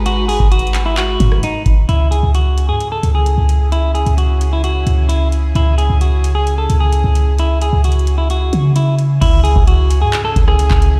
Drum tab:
CC |------------------------------------------------|------------------------------------------------|------------------------------------------------|------------------------------------------------|
HH |x-----o-----x-x-x-x-----x-----x-----x-----x-----|x-----x-----x-----x-----x-----x-----x-----x-----|x-----x--x--x-----x-----x-----x-----x-----x-----|x-----x-----x-----x-----x-----x-----x-----x-----|
CP |------------------x-----x-----------------------|------------------------------------------------|------------------------------------------------|------------------------------------------------|
SD |---------------------------------r--------------|------------------------------------------------|------------------------------------------------|------------------------------------------------|
BD |---------o--------------------o-----------o-----|------------------------------------------------|------------------------------------------------|------------------------------------------------|

CC |------------------------------------------------|x-----------------------------------------------|
HH |x-----x-----x-x-x-x-----x-----x-----x-----x-----|x-----x-----x-----x-----x-----x-----x-----x-----|
CP |------------------------------------------------|------------------------x--------------x--------|
SD |------------------------------------------------|---------------------------------r--------------|
BD |------------------------------------------------|o--------o--------------------o--------o--------|